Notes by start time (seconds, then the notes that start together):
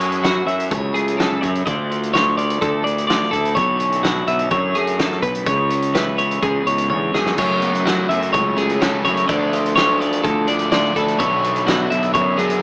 Already playing: F#2 F#3 A3 C#4 E4 C#5
0.01 closed hi-hat
0.12 closed hi-hat
0.22 F#3 E4 F#4, snare, closed hi-hat
0.46 F#2 C#4 E5, closed hi-hat
0.60 closed hi-hat
0.70 C#2 C#5, kick, closed hi-hat
0.93 C#3 A3 G#4, closed hi-hat
1.08 closed hi-hat
1.17 C#4 A4, snare, closed hi-hat
1.41 F#2 E4 C#5, kick, closed hi-hat
1.55 closed hi-hat
1.66 D2 D3 A3 D4 F4 D5, kick, closed hi-hat
1.89 F4, closed hi-hat
2.03 closed hi-hat
2.12 A3 F4 C#5, snare, closed hi-hat
2.37 F4 D5, closed hi-hat
2.50 closed hi-hat
2.61 D2 A4, kick, closed hi-hat
2.83 A2 D4 D5, closed hi-hat
2.98 closed hi-hat
3.07 F4 D5, snare, closed hi-hat
3.22 snare
3.31 D2 E4 A4, kick, closed hi-hat
3.45 closed hi-hat
3.55 B1 B2 D3 A3 C#4 E4 C#5, kick, closed hi-hat
3.80 C#4, closed hi-hat
3.92 closed hi-hat
4.03 D3 E4 F#4, snare, closed hi-hat
4.26 B1 B3 E5, closed hi-hat
4.39 C#4, closed hi-hat
4.51 F#2 C#5, kick, closed hi-hat
4.75 F#2 A3 G#4, closed hi-hat
4.87 closed hi-hat
4.97 A2 A4, snare, closed hi-hat
5.12 snare
5.21 B1 B2 B4, kick, closed hi-hat
5.35 closed hi-hat
5.44 C#2 C#3 C#5, kick, closed hi-hat
5.70 C#4, closed hi-hat
5.82 closed hi-hat
5.93 E3 E4 B4, snare, closed hi-hat
6.16 B3 C#5, closed hi-hat
6.26 C#4
6.31 closed hi-hat
6.42 C#2 G#4, kick, closed hi-hat
6.63 C#2 G#2 B3
6.67 C#5, closed hi-hat
6.78 closed hi-hat
6.88 E2 D3 C#5, high tom
7.12 F#2 E3 G#4, snare
7.26 snare
7.35 F#2 C#3 F#3 A3 C#4 C#5, kick, closed hi-hat, crash
7.60 F#3 A3 B3 C#4, closed hi-hat
7.73 C#4, closed hi-hat
7.84 C#3 F#3 A3 C#4 E4 F#4, snare, closed hi-hat
8.09 F#2 B3 E5, closed hi-hat
8.21 C#4, closed hi-hat
8.33 C#2 C#5, kick, closed hi-hat
8.56 C#3 F#3 A3 C#4 G#4, closed hi-hat
8.70 closed hi-hat
8.80 F#2 C#3 F#3 A3 C#4 A4, snare, closed hi-hat
9.04 F#2 F#3 A3 C#4 E4 C#5, kick, closed hi-hat
9.17 closed hi-hat
9.28 D2 D3 F3 A3 D4 D5, kick, closed hi-hat
9.51 F3 A3 D4 F4, closed hi-hat
9.66 closed hi-hat
9.76 D3 F3 A3 D4 F4 C#5, snare, closed hi-hat
10.00 F4 D5, closed hi-hat
10.13 closed hi-hat
10.24 D2 A4, kick, closed hi-hat
10.47 A2 F3 A3 D4 D5, closed hi-hat
10.59 closed hi-hat
10.70 D3 F3 A3 D4 F4 D5, snare, closed hi-hat
10.85 snare
10.96 D2 F3 A3 D4 E4 A4, kick, closed hi-hat
11.08 closed hi-hat
11.18 B1 B2 D3 F#3 A3 B3 C#4 D4 E4 C#5, kick, closed hi-hat
11.42 F#3 B3 D4, closed hi-hat
11.56 closed hi-hat
11.65 B2 D3 F#3 B3 D4 E4 F#4, snare, closed hi-hat
11.90 B1 E5, closed hi-hat
12.03 closed hi-hat
12.14 F#2 C#5, kick, closed hi-hat
12.37 F#2 F#3 A3 B3 D4 G#4, closed hi-hat
12.50 closed hi-hat